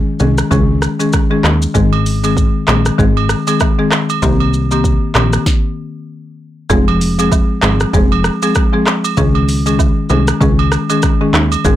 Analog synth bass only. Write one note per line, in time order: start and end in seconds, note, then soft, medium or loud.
0.20 0.44 C2 medium
0.51 0.88 C#2 loud
1.44 1.67 D#2 loud
1.75 2.51 G#1 loud
2.68 2.91 A#1 medium
2.99 3.36 G#1 loud
4.22 4.98 C2 loud
5.15 5.38 A#1 medium
6.70 7.46 F1 loud
7.63 7.86 G#1 loud
7.94 8.30 F1 loud
9.17 9.93 C#2 loud
10.10 10.33 C2 medium
10.41 10.78 C#2 loud
11.33 11.57 D#2 medium
11.65 11.76 G#1 loud